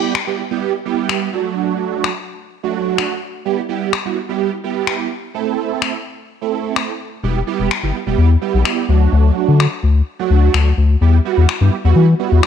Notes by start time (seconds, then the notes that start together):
Already playing: G3 B3 E4 G4
0.15 finger snap
0.27 G3 B3 E4 G4
0.51 G3 B3 E4 G4
0.85 G3 B3 E4 G4
1.09 finger snap
1.33 F#3 A3 D4 F#4
2.04 finger snap
2.63 F#3 A3 D4 F#4
2.98 finger snap
3.45 G3 B3 E4 G4
3.69 G3 B3 E4 G4
3.93 finger snap
4.05 G3 B3 E4 F#4
4.29 G3 B3 E4 G4
4.64 G3 B3 E4 G4
4.87 finger snap
5.34 A3 C4 E4 A4
5.82 finger snap
6.42 A3 C4 E4 A4
6.76 finger snap
7.23 E1 G3 B3 E4 G4
7.47 G3 B3 E4 G4
7.60 E1
7.71 finger snap
7.83 G1 G3 B3 E4 G4
8.07 E1 G3 B3 E4 G4
8.18 E2
8.41 G3 B3 E4 G4
8.54 B1
8.65 finger snap
8.89 D2 F#3 A3 D4 F#4
9.12 D2
9.48 D3
9.60 finger snap
9.83 D2
10.19 F#3 A3 D4 F#4
10.30 D2
10.54 D2, finger snap
10.77 D2
11.01 E2 G3 B3 E4 G4
11.25 G3 B3 E4 F#4
11.38 E2
11.49 finger snap
11.61 G2 G3 B3 E4 G4
11.85 E2 G3 B3 E4 F#4
11.96 E3
12.19 G3 B3 E4 F#4
12.32 E2
12.43 finger snap